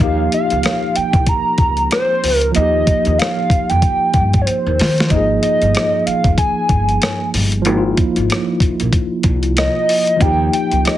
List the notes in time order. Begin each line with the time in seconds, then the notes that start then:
Already playing: F3
0.00 D#2 A#3 D#4 G4 F5, kick
0.32 F5, closed hi-hat
0.50 C#2, closed hi-hat
0.63 cross-stick, closed hi-hat
0.96 G5, muted upright bass stroke, closed hi-hat
1.13 C2, kick, closed hi-hat
1.27 A#5, kick, closed hi-hat
1.58 C#2, kick, closed hi-hat
1.77 closed hi-hat
1.91 C5, cross-stick, closed hi-hat
2.24 C#2, open hi-hat
2.37 A#4
2.41 closed hi-hat
2.52 F3 A#3 D#5, closed hi-hat
2.56 D#2 D#4
2.61 G4
2.87 kick, closed hi-hat
3.05 D#2, closed hi-hat
3.19 F5, cross-stick, closed hi-hat
3.50 muted upright bass stroke, kick, closed hi-hat
3.70 F2 G5, closed hi-hat
3.82 kick, closed hi-hat
4.14 G2, kick, closed hi-hat
4.33 kick, closed hi-hat
4.41 C#5
4.46 C5, muted upright bass stroke, closed hi-hat
4.66 D#2
4.79 D#3, snare, open hi-hat
4.98 snare, closed hi-hat
5.07 G#1 F3 A#3 D#5, kick, closed hi-hat
5.13 D#4 G#4
5.42 D#5, closed hi-hat
5.62 G1, closed hi-hat
5.75 cross-stick, closed hi-hat
6.06 F5, muted upright bass stroke, closed hi-hat
6.24 F1, kick, closed hi-hat
6.38 G#5, kick, closed hi-hat
6.69 G1, kick, closed hi-hat
6.89 closed hi-hat
7.02 cross-stick, closed hi-hat
7.34 G1, open hi-hat
7.52 closed hi-hat
7.62 G#1 F3 A#3, closed hi-hat
7.68 D#4 E4
7.77 F4
7.97 kick, closed hi-hat
8.16 G#1, closed hi-hat
8.30 cross-stick, closed hi-hat
8.60 muted upright bass stroke, kick, closed hi-hat
8.80 A#1, closed hi-hat
8.93 kick, closed hi-hat
9.23 C2, kick, closed hi-hat
9.43 closed hi-hat
9.57 D#5, cross-stick, closed hi-hat
9.89 open hi-hat
10.07 closed hi-hat
10.16 F3 A#3
10.21 D#2 D#4 G5, kick, closed hi-hat
10.25 G4
10.53 G5, closed hi-hat
10.72 C#2, closed hi-hat
10.85 D#5, cross-stick, closed hi-hat